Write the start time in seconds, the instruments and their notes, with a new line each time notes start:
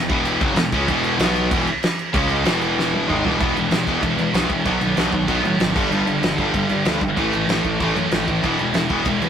0.10 picked electric bass E1, distorted electric guitar E2 B2 E3, kick, crash
0.25 crash
0.41 picked electric bass F#1, distorted electric guitar F#2 C#3 F#3, kick, crash
0.55 picked electric bass E1, distorted electric guitar E2 B2, snare, crash
0.72 picked electric bass C#2, distorted electric guitar C#3 G#3 C#4, kick, crash
0.88 picked electric bass E1, distorted electric guitar E2 B2 E3, kick, crash
1.04 crash
1.19 picked electric bass B1, distorted electric guitar B2 F#3 B3, snare, crash
1.36 crash
1.51 picked electric bass E1, distorted electric guitar E2 B2 E3, kick, crash
1.67 crash
1.83 snare, crash
1.99 crash
2.14 picked electric bass C#2, distorted electric guitar C#3 G#3 C#4, kick, crash
2.29 crash
2.44 picked electric bass E1, distorted electric guitar E2 B2 E3, snare, crash
2.62 crash
2.79 snare
2.94 high tom
3.09 picked electric bass G#1, distorted electric guitar G#2 D#3 G#3, mid tom
3.25 picked electric bass E1, distorted electric guitar E2 B2 E3, floor tom
3.39 picked electric bass E1, overdriven electric guitar E2 B2, distorted electric guitar E3 G#3 B3, kick, crash
3.56 picked electric bass E1, overdriven electric guitar E2 B2, distorted electric guitar E3 G#3, crash
3.71 picked electric bass E1, overdriven electric guitar E2 B2, distorted electric guitar E3 G#3, snare, crash
3.86 picked electric bass E1, overdriven electric guitar E2 B2, distorted electric guitar E3 G#3 B3, kick, crash
4.03 picked electric bass E1, overdriven electric guitar E2 B2, distorted electric guitar E3 G#3, kick, crash
4.17 picked electric bass E2, overdriven electric guitar E2 B2, distorted electric guitar E3 G#3, crash
4.33 picked electric bass B1, overdriven electric guitar E2 B2, distorted electric guitar E3 G#3 B3, snare, crash
4.49 picked electric bass E1, overdriven electric guitar E2 B2, distorted electric guitar E3 G#3, kick, crash
4.65 picked electric bass B1, distorted electric guitar B2 D#3 F#3, overdriven electric guitar B3, kick, crash
4.80 picked electric bass B1, distorted electric guitar B2 D#3, overdriven electric guitar F#3, crash
4.96 picked electric bass B1, distorted electric guitar B2 D#3 F#3, overdriven electric guitar B3, snare, crash
5.12 picked electric bass B1, distorted electric guitar B2 D#3, overdriven electric guitar F#3, kick, crash
5.28 picked electric bass B1, distorted electric guitar B2 D#3 F#3, overdriven electric guitar B3, kick, crash
5.43 picked electric bass A2, distorted electric guitar B2 D#3, overdriven electric guitar F#3, crash
5.60 picked electric bass G#1, distorted electric guitar B2 D#3, overdriven electric guitar F#3, snare, crash
5.75 picked electric bass G1, distorted electric guitar G2 D3 G3, kick, crash
5.91 picked electric bass G1, distorted electric guitar G2 D3 G3, crash
6.06 picked electric bass G1, distorted electric guitar G2 D3, crash
6.22 picked electric bass G1, distorted electric guitar G2 D3, snare, crash
6.36 picked electric bass G1, distorted electric guitar G2 D3, overdriven electric guitar G3, kick, crash
6.41 distorted electric guitar G3
6.54 picked electric bass G1, distorted electric guitar G2 D3, kick, crash
6.69 distorted electric guitar G2 D3, picked electric bass G2, crash
6.85 picked electric bass D2, distorted electric guitar G2 D3 G3, snare, crash
7.01 picked electric bass G1, distorted electric guitar G2 D3, kick, crash
7.17 picked electric bass A1, distorted electric guitar A2 E3 A3, kick, crash
7.33 picked electric bass A1, distorted electric guitar A2 E3, crash
7.48 picked electric bass A1, distorted electric guitar A2 E3 A3, snare, crash
7.64 picked electric bass A1, distorted electric guitar A2 E3, kick, crash
7.80 picked electric bass A1, distorted electric guitar A2 E3 A3, kick, crash
7.95 picked electric bass F#2, distorted electric guitar A2 E3, crash
8.11 picked electric bass A1, distorted electric guitar A2 E3, snare, crash
8.27 picked electric bass A1, distorted electric guitar A2 E3, kick, crash
8.42 picked electric bass E1, overdriven electric guitar E2 B2, distorted electric guitar E3 G#3 B3, kick, crash
8.59 picked electric bass E1, overdriven electric guitar E2 B2, distorted electric guitar E3 G#3, crash
8.74 picked electric bass E1, overdriven electric guitar E2 B2, distorted electric guitar E3 G#3, snare, crash
8.89 picked electric bass E1, overdriven electric guitar E2 B2, distorted electric guitar E3 G#3 B3, kick, crash
9.05 picked electric bass E1, overdriven electric guitar E2 B2, distorted electric guitar E3 G#3, kick, crash
9.21 picked electric bass E2, overdriven electric guitar E2 B2, distorted electric guitar E3 G#3, crash